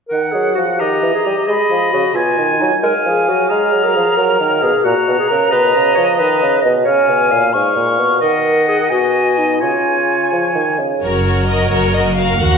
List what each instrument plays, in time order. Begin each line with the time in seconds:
0.09 bassoon D#3, clarinet A#4, oboe F#5, flute F#5
0.32 bassoon F#3, clarinet G#4
0.55 bassoon F3, clarinet F#4
0.77 bassoon D#3, clarinet G4, oboe D#5, flute A#5
1.02 bassoon E3
1.14 clarinet G#4
1.24 bassoon G3, clarinet G4
1.46 bassoon G#3, clarinet G#4, oboe D#5, flute B5
1.70 bassoon F3
1.91 bassoon C#3, clarinet F#4
2.14 bassoon B2, clarinet F4, flute G#5, oboe G#5
2.38 bassoon D#3
2.60 bassoon F#3, clarinet D#4
2.82 bassoon G#3, clarinet A#4, oboe F5, flute G#5
3.05 bassoon F3, clarinet G#4
3.28 bassoon F#3, clarinet F#4
3.49 bassoon G#3, clarinet G#4, oboe F5, flute A#5
3.73 bassoon F#3
3.84 clarinet A#4
3.95 bassoon F3, clarinet G#4
4.17 bassoon F#3, clarinet A#4
4.40 bassoon D#3
4.62 bassoon B2, clarinet G#4
4.84 bassoon A#2, clarinet F#4, oboe F#5, flute A#5
5.08 bassoon B2
5.19 clarinet G#4
5.30 bassoon C#3, clarinet A#4
5.51 bassoon B2, clarinet B4, oboe D#5
5.76 bassoon C#3
5.95 bassoon F3, clarinet C#5
6.19 bassoon D#3, clarinet B4
6.42 bassoon C#3
6.61 bassoon B2, clarinet D#5
6.84 bassoon C#3, clarinet C#5, oboe F5, flute G#5
7.09 bassoon B2
7.31 bassoon A#2, clarinet F5
7.53 bassoon G#2, oboe F5, flute C#6
7.76 bassoon A#2
7.98 bassoon B2
8.21 bassoon D#3, clarinet A#4, oboe D#5, flute F#5
8.68 clarinet G#4
8.90 bassoon B2, clarinet F#4, oboe D#5, flute G#5
9.38 clarinet D#4
9.60 bassoon C#3, clarinet F4, oboe C#5, flute G#5
10.32 bassoon F3
10.55 bassoon D#3
10.79 bassoon C#3
11.02 double bass section F#1, cello section F#2, violin section F#4 A#4 C#5, viola section A#4
11.25 violin section F#4 A#4
11.49 violin section F#4 A#4 D#5
11.71 double bass section F#1, cello section F#2, violin section F#4 A#4 C#5
11.94 violin section F#4 A#4 D#5
12.16 violin section F#4 A#4 F5
12.39 cello section D#2, double bass section D#2, viola section F#4, violin section F#4 A#4 F#5